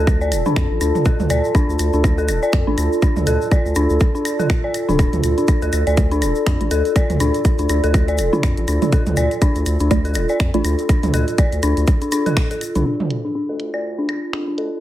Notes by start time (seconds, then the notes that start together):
Already playing: D2 F4 A4 D5 A5
0.07 kick, claves, shaker
0.21 D5, shaker
0.32 D1, closed hi-hat, claves, shaker
0.46 A3 D4, mid tom, shaker
0.56 F2, finger snap, kick, claves, shaker
0.71 A1
0.81 D2 D4, closed hi-hat, claves, shaker
0.95 A3, mid tom, shaker
1.05 A4, kick, claves, shaker
1.20 D2, mid tom, shaker
1.30 D2 D5, closed hi-hat, claves, shaker
1.44 shaker
1.55 D4, kick, claves, shaker
1.69 D2, shaker
1.79 D2, closed hi-hat, claves, shaker
1.93 D2 D4, shaker
2.04 A3 F4 D5, kick, claves, shaker
2.18 A4, shaker
2.28 D1, closed hi-hat, claves, shaker
2.43 D5, shaker
2.53 F2, finger snap, kick, claves, shaker
2.67 A1 A3 D4 F4 D5
2.78 D2, closed hi-hat, claves, shaker
2.93 shaker
3.02 D4, kick, claves, shaker
3.16 D2, mid tom, shaker
3.27 D2 A4, closed hi-hat, claves, shaker
3.41 shaker
3.51 D5, kick, claves, shaker
3.66 D2, shaker
3.75 D2 D4, closed hi-hat, claves, shaker
3.90 D2, shaker
4.00 kick, claves, shaker
4.15 D4, shaker
4.25 closed hi-hat, claves, shaker
4.39 A4, mid tom, shaker
4.50 finger snap, kick, claves, shaker
4.64 D5
4.74 closed hi-hat, claves, shaker
4.89 D1 D4, mid tom, shaker
4.99 D4, kick, closed hi-hat, claves, shaker
5.13 D2, closed hi-hat, mid tom, shaker
5.24 D2, closed hi-hat, claves, shaker
5.38 D4, closed hi-hat, shaker
5.48 D4, kick, closed hi-hat, claves, shaker
5.62 D2 A4, closed hi-hat, shaker
5.73 D2, closed hi-hat, claves, shaker
5.87 D2 D5, closed hi-hat, shaker
5.97 A3 F4 D5, kick, closed hi-hat, claves, shaker
6.11 D4, closed hi-hat, shaker
6.22 D1, closed hi-hat, claves, shaker
6.35 shaker
6.46 F2 D4, finger snap, kick, closed hi-hat, claves, shaker
6.61 A1 A3 D4 F4 D5, closed hi-hat
6.71 D2 A4, closed hi-hat, claves, shaker
6.85 closed hi-hat, shaker
6.96 D5, kick, closed hi-hat, claves, shaker
7.10 D2, closed hi-hat, mid tom, shaker
7.20 D2 D4, closed hi-hat, claves, shaker
7.34 closed hi-hat, shaker
7.45 kick, closed hi-hat, claves, shaker
7.58 D2 D4, closed hi-hat, shaker
7.69 D2 D4, closed hi-hat, claves, shaker
7.84 D2 A4, closed hi-hat, shaker
7.94 kick, closed hi-hat, claves, shaker
8.08 D5, closed hi-hat, shaker
8.18 D1, closed hi-hat, claves, shaker
8.33 A3 D4 F4 D5, mid tom, shaker
8.43 F2, finger snap, kick, closed hi-hat, claves, shaker
8.57 A1, closed hi-hat
8.68 D2 D4, closed hi-hat, claves, shaker
8.82 A3 D4 F4 D5, closed hi-hat, mid tom, shaker
8.92 A4, kick, closed hi-hat, claves, shaker
9.06 D2, closed hi-hat, mid tom, shaker
9.17 D2 D5, closed hi-hat, claves, shaker
9.31 closed hi-hat, shaker
9.42 D4, kick, closed hi-hat, claves, shaker
9.55 D2, closed hi-hat, shaker
9.66 D2, closed hi-hat, claves, shaker
9.80 D2 D4, closed hi-hat, shaker
9.91 A3 D4 F4 D5, kick, closed hi-hat, claves, shaker
10.05 A4, closed hi-hat, shaker
10.14 D1, closed hi-hat, claves, shaker
10.29 D5, shaker
10.40 F2, finger snap, kick, closed hi-hat, claves, shaker
10.54 A1 A3 D4 F4 D5, closed hi-hat
10.65 D2, closed hi-hat, claves, shaker
10.79 closed hi-hat, shaker
10.89 D4, kick, closed hi-hat, claves, shaker
11.03 D2 D4, closed hi-hat, mid tom, shaker
11.14 D2 A4, closed hi-hat, claves, shaker
11.28 closed hi-hat, shaker
11.38 D5, kick, closed hi-hat, claves, shaker
11.52 D2, closed hi-hat, shaker
11.63 D2 D4, closed hi-hat, claves, shaker
11.77 D2, closed hi-hat, shaker
11.87 kick, closed hi-hat, claves, shaker
12.01 D4, closed hi-hat, shaker
12.12 D4, closed hi-hat, claves, shaker
12.26 A4, closed hi-hat, mid tom, shaker
12.37 finger snap, kick, closed hi-hat, claves, shaker
12.51 A4, closed hi-hat, shaker
12.61 closed hi-hat, claves, shaker
12.75 C2 D4, closed hi-hat, mid tom, shaker
12.86 D4 F4
13.00 D2, mid tom
13.08 D2 A4, closed hi-hat
13.25 D4
13.32 D4 D5
13.49 D2 A4
13.60 D2, closed hi-hat
13.74 D2 D5, claves
13.88 A5
13.98 D4
14.09 D1, closed hi-hat, claves
14.33 F2 D4, finger snap
14.48 A1 D4
14.58 D2 A4, closed hi-hat